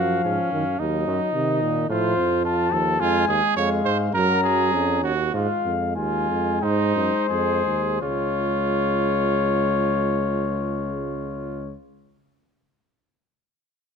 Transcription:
Already playing: bass trombone F#2, trombone F3, trumpet F#4, cornet F5
0.24 bass trombone G#2, trumpet C#4
0.52 bass trombone F#2, trombone D#3
0.79 bass trombone D#2, trombone F#3, trumpet D#4, cornet D#5
1.08 bass trombone F#2
1.34 bass trombone C3, trombone D#3
1.62 bass trombone A#2
1.89 bass trombone A2, trombone F3, trumpet F4, cornet C5
2.17 bass trombone F2
2.45 trumpet F4, cornet A5
2.72 bass trombone D#2, trumpet A4
3.00 bass trombone F2, trombone G#3, trumpet F4, cornet G#5
3.28 bass trombone D#2, trumpet G#4
3.57 bass trombone F2, trombone G#3, trumpet C#5, cornet F5
3.85 bass trombone G#2, trumpet C5
4.13 bass trombone F#2, trombone F#3, trumpet A#4, cornet A#5
4.44 trumpet G#4
4.72 bass trombone F2, trombone C#4
5.03 bass trombone D#2, trumpet F#4
5.33 bass trombone G#2, trombone G#3, trumpet F4, cornet F5
5.65 bass trombone F2
5.96 bass trombone D#2, trumpet F4, cornet G#5
6.29 bass trombone F2
6.62 bass trombone G#2, trumpet D#4, cornet C5
6.96 bass trombone F#2
7.29 bass trombone F2, trumpet G#4
7.66 bass trombone D#2
8.02 bass trombone C#2, trombone G#3, trumpet F4, cornet C#5

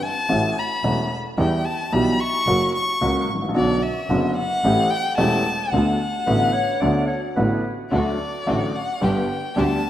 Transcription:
0.03 violin A5
0.29 upright piano A1 A2 E3 A3 C#4 F#4, double bass A1
0.59 violin B5
0.84 double bass E1, upright piano E1 E2 E3 A3 C#4 F#4
1.38 double bass E2, upright piano E2 E3 G3 B3 G4, violin G5
1.65 violin A5
1.92 double bass B1, upright piano B1 B2 E3 G3 B3 G4, violin B5
2.19 violin C#6
2.47 double bass F#1, upright piano F#2 C#3 F#3 A#3 F#4
2.75 violin C#6
3.01 upright piano C#2 C#3 F#3 A#3 F#4, double bass C#2
3.29 double bass A1
3.35 upright piano G#1
3.42 upright piano A1
3.49 upright piano A#1
3.54 upright piano B1 B2 D3 F#3 B3 F#4, double bass B1, violin D5
3.82 violin E5
4.10 double bass F#1, upright piano F#1 F#2 D3 F#3 B3 F#4
4.36 violin F#5
4.64 double bass A1, upright piano A1 A2 E3 A3 C#4 G4
4.90 violin G5
5.18 upright piano E1 E2 E3 A3 C#4 G4, double bass E1, violin A5
5.72 double bass D2, upright piano D2 D3 A3 B3 F#4, violin F#5
6.26 upright piano A1 A2 D3 A3 B3 F#4, double bass A1, clarinet B4
6.53 clarinet C#5
6.81 upright piano D2 D3 A3 B3 F#4, double bass D2, clarinet D5
7.08 clarinet C#5
7.36 upright piano A1 A2 D3 A3 B3 F#4, double bass A1, clarinet B4
7.91 upright piano D2 D3 F#3 A3 F#4, double bass D2, string section A3 D4 F#4, violin D5
8.46 upright piano A1 A2 D3 F#3 A3 F#4, double bass A1, string section A3 D4 F#4
8.75 violin F#5
9.01 upright piano G1 G2 D3 G3 B3 G4, double bass G1, string section B3 D4 G4, violin G5
9.56 upright piano D2 D3 G3 B3 G4, double bass D2, string section B3 D4 G4, violin A5

